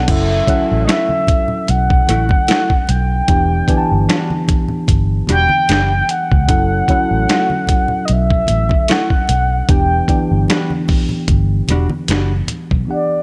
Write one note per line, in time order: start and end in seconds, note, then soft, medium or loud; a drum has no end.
0.00 0.10 B2 medium
0.00 0.11 B3 medium
0.00 0.10 D4 medium
0.00 0.09 A4 medium
0.00 0.10 C#5 medium
0.00 0.12 F#5 medium
0.07 0.40 F#1 medium
0.07 0.40 F#3 medium
0.07 0.40 C#4 medium
0.07 0.41 E4 medium
0.07 0.41 A4 medium
0.07 0.83 E5 medium
0.07 0.41 F#5 medium
0.07 kick loud
0.07 closed hi-hat medium
0.07 crash medium
0.47 1.74 F#3 medium
0.47 1.74 C#4 medium
0.47 1.75 E4 medium
0.47 1.75 A4 medium
0.47 1.75 F#5 medium
0.47 kick medium
0.47 closed hi-hat medium
0.47 muted conga soft
0.47 high conga medium
0.71 0.85 A1 medium
0.85 1.10 A3 medium
0.85 0.92 D#5 medium
0.89 1.10 E4 medium
0.89 1.10 F#4 medium
0.89 1.72 E5 loud
0.89 finger snap medium
0.89 snare medium
0.89 closed hi-hat medium
1.09 high conga soft
1.27 kick medium
1.27 closed hi-hat medium
1.27 muted conga soft
1.27 low conga medium
1.48 low conga medium
1.67 2.01 B1 medium
1.67 2.92 F#5 loud
1.67 closed hi-hat medium
1.67 muted conga soft
1.90 kick medium
2.07 2.26 A1 medium
2.07 2.26 A3 medium
2.07 2.26 E4 medium
2.07 2.26 F#4 medium
2.07 closed hi-hat medium
2.07 high conga soft
2.29 kick medium
2.29 high conga medium
2.47 2.70 A3 medium
2.47 2.70 E4 medium
2.47 2.70 F#4 medium
2.47 snare loud
2.47 closed hi-hat medium
2.47 muted conga soft
2.52 finger snap medium
2.70 kick medium
2.87 3.21 B1 medium
2.87 4.49 G5 loud
2.87 closed hi-hat medium
2.87 muted conga soft
3.28 3.61 E1 medium
3.28 3.60 E3 medium
3.28 3.61 B3 medium
3.28 3.61 D4 medium
3.28 3.62 G4 medium
3.28 3.62 G5 medium
3.28 kick loud
3.28 closed hi-hat medium
3.68 4.95 E3 medium
3.68 4.95 B3 medium
3.68 4.95 D4 medium
3.68 4.96 G4 medium
3.68 3.77 G#5 medium
3.68 kick medium
3.68 closed hi-hat medium
3.68 high conga medium
3.78 4.99 A5 medium
3.92 4.05 G1 medium
4.09 4.31 G3 medium
4.09 4.31 D4 medium
4.09 4.31 F#4 medium
4.09 finger snap medium
4.09 snare medium
4.09 closed hi-hat medium
4.09 muted conga soft
4.30 high conga soft
4.48 kick medium
4.48 closed hi-hat medium
4.48 muted conga soft
4.48 low conga medium
4.68 low conga medium
4.88 5.21 G1 medium
4.88 kick medium
4.88 closed hi-hat medium
4.88 muted conga soft
5.27 5.47 E1 medium
5.27 5.46 G3 medium
5.27 5.46 D4 medium
5.27 5.46 F#4 medium
5.27 closed hi-hat medium
5.27 high conga medium
5.32 6.12 G5 loud
5.49 high conga medium
5.68 6.01 F#1 medium
5.68 5.91 G3 medium
5.68 5.91 D4 medium
5.68 5.91 F#4 medium
5.68 snare loud
5.68 closed hi-hat medium
5.68 muted conga soft
5.73 finger snap medium
6.07 8.07 F#5 loud
6.07 closed hi-hat medium
6.07 muted conga soft
6.32 6.46 C#2 medium
6.32 kick medium
6.48 6.81 F#1 medium
6.48 6.80 F#3 medium
6.48 6.81 C#4 medium
6.48 6.81 E4 medium
6.48 6.81 A4 medium
6.48 6.82 F#5 medium
6.48 kick loud
6.48 closed hi-hat medium
6.88 8.15 F#3 medium
6.88 8.15 C#4 medium
6.88 8.16 E4 medium
6.88 8.16 A4 medium
6.88 8.16 F#5 medium
6.88 kick medium
6.88 closed hi-hat soft
6.88 muted conga soft
6.88 high conga medium
7.11 7.25 A1 medium
7.28 7.52 A3 medium
7.28 7.52 E4 medium
7.28 7.52 F#4 medium
7.28 finger snap medium
7.28 snare loud
7.28 closed hi-hat medium
7.28 muted conga soft
7.50 high conga soft
7.67 kick medium
7.67 closed hi-hat medium
7.67 muted conga soft
7.67 low conga medium
7.88 low conga medium
8.05 8.14 D#5 medium
8.05 closed hi-hat medium
8.09 8.41 B1 medium
8.09 8.93 E5 loud
8.30 kick loud
8.47 8.67 A1 medium
8.47 closed hi-hat medium
8.47 muted conga soft
8.47 high conga soft
8.69 kick medium
8.69 high conga medium
8.88 9.11 A3 medium
8.88 9.11 E4 medium
8.88 9.11 F#4 medium
8.88 9.72 F#5 medium
8.88 finger snap medium
8.88 snare loud
8.88 closed hi-hat medium
9.10 kick medium
9.28 9.61 B1 medium
9.28 closed hi-hat medium
9.28 muted conga soft
9.68 10.01 E1 medium
9.68 10.01 E3 medium
9.68 10.01 B3 medium
9.68 10.01 D4 medium
9.68 10.02 G4 medium
9.68 10.02 G5 medium
9.68 10.50 G5 medium
9.68 kick loud
9.68 closed hi-hat medium
10.08 11.35 E3 medium
10.08 11.35 B3 medium
10.08 11.35 D4 medium
10.08 11.35 G4 medium
10.08 11.36 G5 medium
10.08 kick medium
10.08 closed hi-hat soft
10.08 high conga medium
10.31 10.45 G1 medium
10.48 10.71 G3 medium
10.48 10.72 D4 medium
10.48 10.72 F#4 medium
10.48 finger snap medium
10.48 snare loud
10.48 closed hi-hat medium
10.48 muted conga soft
10.70 high conga medium
10.88 kick medium
10.88 open hi-hat soft
10.88 muted conga soft
10.88 low conga medium
11.09 low conga medium
11.28 11.60 G1 loud
11.28 kick medium
11.28 closed hi-hat medium
11.68 11.86 E1 medium
11.68 11.86 G3 medium
11.68 11.87 D4 medium
11.68 11.87 F#4 medium
11.68 closed hi-hat medium
11.68 muted conga soft
11.68 high conga soft
11.90 high conga medium
12.08 12.41 F#1 medium
12.08 12.31 G3 medium
12.08 12.31 D4 medium
12.08 snare medium
12.08 closed hi-hat medium
12.08 muted conga soft
12.12 12.32 F#4 medium
12.12 finger snap medium
12.47 closed hi-hat medium
12.47 low conga medium
12.71 12.85 B1 medium
12.71 kick medium
12.86 13.23 E3 soft
12.86 13.23 B3 soft
12.86 13.23 D4 soft
12.90 13.23 G4 soft
12.90 13.23 D5 medium
12.90 13.23 F#5 medium